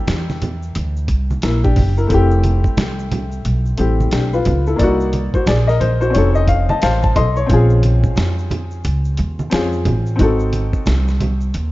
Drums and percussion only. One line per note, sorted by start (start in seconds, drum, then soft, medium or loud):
0.07 snare loud
0.07 closed hi-hat medium
0.07 low conga medium
0.07 shaker medium
0.30 snare soft
0.30 high conga medium
0.30 shaker soft
0.42 closed hi-hat medium
0.42 low conga medium
0.42 shaker soft
0.63 shaker soft
0.75 closed hi-hat medium
0.75 shaker medium
0.97 shaker soft
1.08 kick medium
1.08 closed hi-hat medium
1.08 shaker soft
1.31 high conga medium
1.31 shaker soft
1.42 snare loud
1.42 closed hi-hat medium
1.42 shaker medium
1.64 kick medium
1.64 shaker soft
1.76 kick medium
1.76 open hi-hat medium
1.76 low conga medium
1.76 shaker soft
1.97 shaker soft
2.10 kick loud
2.10 closed hi-hat medium
2.10 shaker medium
2.31 shaker soft
2.44 closed hi-hat medium
2.44 high conga soft
2.44 shaker soft
2.64 kick medium
2.64 shaker soft
2.77 snare loud
2.77 closed hi-hat medium
2.77 low conga medium
2.77 shaker medium
2.99 shaker soft
3.12 closed hi-hat medium
3.12 high conga soft
3.12 low conga medium
3.12 shaker soft
3.32 shaker medium
3.45 closed hi-hat medium
3.45 shaker medium
3.66 shaker soft
3.78 closed hi-hat medium
3.78 shaker soft
4.00 high conga medium
4.00 shaker soft
4.11 snare loud
4.11 closed hi-hat medium
4.11 shaker medium
4.33 shaker soft
4.45 kick medium
4.45 closed hi-hat medium
4.45 low conga medium
4.45 shaker medium
4.67 shaker soft
4.79 kick loud
4.79 closed hi-hat medium
4.79 shaker medium
5.00 shaker soft
5.13 closed hi-hat medium
5.13 high conga medium
5.13 shaker soft
5.34 kick medium
5.34 shaker soft
5.46 snare loud
5.46 closed hi-hat medium
5.46 low conga medium
5.46 shaker medium
5.69 snare soft
5.69 shaker soft
5.81 closed hi-hat medium
5.81 high conga soft
5.81 low conga medium
5.81 shaker soft
6.02 shaker medium
6.14 closed hi-hat medium
6.14 shaker medium
6.35 shaker soft
6.48 kick medium
6.48 closed hi-hat medium
6.48 shaker soft
6.69 high conga medium
6.69 shaker soft
6.82 snare loud
6.82 closed hi-hat medium
6.82 shaker medium
7.02 kick loud
7.02 shaker soft
7.16 kick medium
7.16 closed hi-hat medium
7.16 low conga medium
7.16 shaker soft
7.36 shaker soft
7.49 kick loud
7.49 closed hi-hat medium
7.49 shaker medium
7.70 shaker soft
7.83 closed hi-hat medium
7.83 high conga soft
7.83 shaker soft
8.04 kick medium
8.04 shaker soft
8.16 snare loud
8.16 closed hi-hat medium
8.16 low conga medium
8.16 shaker medium
8.38 shaker soft
8.51 closed hi-hat medium
8.51 high conga soft
8.51 low conga medium
8.51 shaker soft
8.71 shaker soft
8.84 closed hi-hat medium
8.84 shaker medium
9.05 shaker soft
9.17 closed hi-hat medium
9.17 shaker medium
9.39 high conga medium
9.39 shaker soft
9.51 snare loud
9.51 closed hi-hat medium
9.51 shaker medium
9.73 shaker soft
9.85 kick medium
9.85 closed hi-hat medium
9.85 low conga medium
9.85 shaker soft
10.06 shaker soft
10.19 kick loud
10.19 closed hi-hat medium
10.19 shaker medium
10.40 shaker soft
10.53 closed hi-hat medium
10.53 high conga medium
10.53 shaker medium
10.73 kick medium
10.73 shaker soft
10.86 snare loud
10.86 closed hi-hat medium
10.86 low conga medium
10.86 shaker medium
11.08 snare soft
11.08 shaker soft
11.21 closed hi-hat medium
11.21 high conga medium
11.21 low conga medium
11.21 shaker soft
11.41 shaker soft
11.54 closed hi-hat medium
11.54 shaker medium